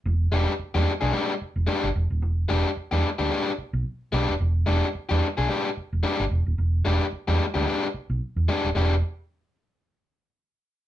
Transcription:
0.06 E1
0.32 E1 G#3 D4 G4
0.59 muted fingered electric bass stroke
0.74 E2 G#3 D4 G4
1.01 B1 G#3 D4 G#4
1.12 G#3 D4 G4
1.41 muted fingered electric bass stroke
1.56 E1
1.67 G#3 D4 G4
1.83 G1
1.95 E1
2.10 D#1
2.22 E1
2.49 E1 G#3 D4 G4
2.77 muted fingered electric bass stroke
2.91 E2 G#3 D4 G4
3.19 D2 G#3 D4 G4
3.31 G#3 D4 G4
3.58 muted fingered electric bass stroke
3.73 B1
4.12 B1 G#3 D4 G4
4.28 D#1
4.40 E1
4.66 E1 G#3 D4 G4
4.95 muted fingered electric bass stroke
5.09 E2 G#3 D4 G4
5.37 B1 G#3 D4 G#4
5.49 G#3 D4 G4
5.77 muted fingered electric bass stroke
5.93 E1
6.03 G#3 D4 G4
6.19 G1
6.31 E1
6.46 D#1
6.58 E1
6.85 E1 G#3 D4 G4
7.13 muted fingered electric bass stroke
7.28 E2 G#3 D4 G4
7.54 D2 G#3 D4 G4
7.66 G#3 D4 G4
7.94 muted fingered electric bass stroke
8.10 B1
8.36 E2
8.49 G#3 D4 G4
8.64 D#1
8.75 E1 G#3 D4 G4

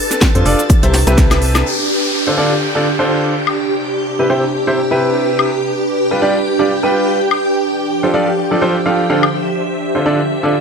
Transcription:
Already playing: D4 G4 A4 B4 A5
0.11 snare, closed hi-hat, shaker
0.21 kick, snare, closed hi-hat, shaker
0.35 F2 F3 D4 F4 A4 C5, closed hi-hat, shaker
0.46 F1 D4 F4 A4 D5, open hi-hat, shaker
0.59 snare, closed hi-hat, shaker
0.70 kick, closed hi-hat, shaker
0.83 C2 C3 C4 E4 G4 C5, closed hi-hat, shaker
0.94 snare, open hi-hat, shaker
1.07 C2 C3 C4 E4 G4 B4, snare, closed hi-hat, shaker
1.18 kick, snare, closed hi-hat, shaker
1.31 snare, closed hi-hat, high woodblock, shaker
1.42 open hi-hat
1.55 snare, high woodblock, shaker
1.66 G4 G5, downlifter
2.27 D3 D4 F4 A4 C5
2.38 D3 D4 F4 A4 D5
2.75 D3 D4 F4 A4 D5
2.99 D3 D4 F4 A4 C5
3.34 C3
3.47 high woodblock
4.07 B4
4.19 C3 C4 E4 G4 B4
4.30 C3 C4 E4 G4 C5
4.67 C3 C4 E4 G4 C5
4.91 C3 C4 E4 G4 B4
5.39 high woodblock
6.11 G3 D4 F4 G4 B4
6.22 G3 D4 F4 G4 D5
6.59 G3 D4 F4 G4 D5
6.83 G3 D4 F4 G4 B4
7.18 F3
7.31 high woodblock
7.40 C5
8.03 F3 D4 F4 A4 C5
8.14 F3 D4 F4 A4 D5
8.51 F3 D4 F4 A4 D5
8.62 F3 D4 F4 A4 C5
8.86 F3 D4 F4 A4 F5
9.10 D3 D4 F4 A4 F5
9.23 high woodblock
9.34 E5
9.95 D3 D4 F4 A4 C5
10.06 D3 D4 F4 A4 D5
10.43 D3 D4 F4 A4 D5

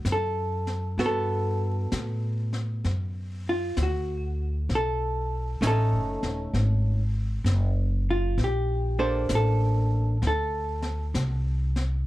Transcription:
0.05 F#2, snare, hi-hat pedal
0.12 A4
0.67 snare
0.98 G2 B3 F#4 A4, brush sweep, snare
1.06 A4
1.92 A2, snare, hi-hat pedal
2.53 snare
2.84 F#2, brush sweep, snare
3.49 F4
3.77 D2, snare, hi-hat pedal
3.83 F#4
4.69 B1, brush sweep, snare
4.75 A4
5.61 A1 A3 C#4 D#4, snare, hi-hat pedal
5.67 A4
5.93 F#1
6.23 D#1, snare
6.53 G#1, brush sweep, snare
7.44 F#1, snare, hi-hat pedal
8.11 F4
8.38 A#1, brush sweep, snare
8.44 G4
8.99 A#3 D4 A4 C5
9.29 A1, snare, hi-hat pedal
9.35 A4
10.22 D2, brush sweep, snare
10.27 A4
10.82 snare
11.14 C2, snare, hi-hat pedal
11.76 snare

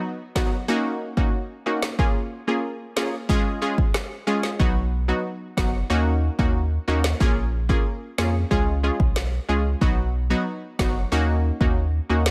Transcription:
0.35 F#3 B3 D#4 F#4, kick, snare
0.68 A#3 C#4 D#4 F#4
1.17 A#3 C#4 D#4 F#4, kick
1.66 A#3 C#4 D#4 F#4
1.82 snare
1.99 A#3 C#4 F4 G#4, kick
2.47 A#3 C#4 F4 G#4
2.96 A#3 C#4 F4 G#4, snare
3.29 G#3 C#4 F4 G#4, kick
3.62 G#3 C#4 F4 G#4
3.78 kick
3.94 cross-stick, snare
4.27 G#3 C#4 F4 G#4
4.43 snare
4.59 B1 F#3 B3 D#4 F#4, kick
5.08 F#3 B3 D#4 F#4
5.57 F#1 F#3 B3 D#4 F#4, kick, snare
5.90 D#2 A#3 C#4 D#4 F#4
6.39 D#2 A#3 C#4 D#4 F#4, kick
6.88 D#2 A#3 C#4 D#4 F#4
7.04 snare
7.20 A#1 A#3 C#4 F4 G#4, kick
7.69 A#3 C#4 F4 G#4, kick
8.18 F2 A#3 C#4 F4 G#4, snare
8.51 C#2 G#3 C#4 F4 G#4, kick
8.83 G#3 C#4 F4 G#4
9.00 B1, kick
9.16 snare
9.49 C#2 G#3 C#4 F4 G#4
9.81 B1 F#3 B3 D#4 F#4, kick
10.30 F#3 B3 D#4 F#4
10.79 F#1 F#3 B3 D#4 F#4, kick, snare
11.12 D#2 A#3 C#4 D#4 F#4
11.61 D#2 A#3 C#4 D#4 F#4, kick
12.09 D#2 A#3 C#4 D#4 F#4
12.26 snare

